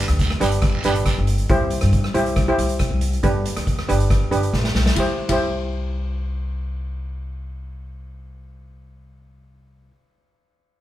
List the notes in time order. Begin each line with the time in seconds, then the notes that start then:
Already playing: D4 G4 B4
0.08 D2, cross-stick, closed hi-hat
0.19 kick, closed hi-hat, short guiro
0.30 cross-stick
0.40 G1 D4 G4 B4, closed hi-hat, short guiro
0.52 closed hi-hat
0.62 kick, cross-stick, closed hi-hat, long guiro
0.84 G1 D4 G4 B4, closed hi-hat, short guiro
0.95 closed hi-hat
1.06 kick, cross-stick, closed hi-hat, short guiro
1.18 G1
1.27 closed hi-hat
1.38 closed hi-hat
1.49 C2 E4 G4 C5, kick, closed hi-hat
1.70 closed hi-hat
1.81 G2, cross-stick, closed hi-hat
1.93 kick, closed hi-hat
2.04 cross-stick
2.14 C2 E4 G4 C5, closed hi-hat
2.26 closed hi-hat
2.36 kick, cross-stick, closed hi-hat
2.48 E4 G4 C5
2.58 C2, closed hi-hat
2.69 closed hi-hat
2.79 kick, cross-stick, closed hi-hat
2.91 C2
3.01 closed hi-hat
3.13 closed hi-hat
3.23 G1 D4 G4 B4, kick, closed hi-hat
3.46 closed hi-hat
3.57 D2, cross-stick, closed hi-hat
3.67 kick, closed hi-hat
3.79 cross-stick
3.88 G1 D4 G4 B4, closed hi-hat
4.00 closed hi-hat
4.10 kick, cross-stick, closed hi-hat
4.31 G1 D4 G4 B4, closed hi-hat
4.43 closed hi-hat
4.53 A1, kick, snare
4.64 snare
4.75 B1, snare
4.86 snare
4.96 C2 E4 G4, kick, ride
5.00 C5
5.29 C2 E4 G4 C5, kick, ride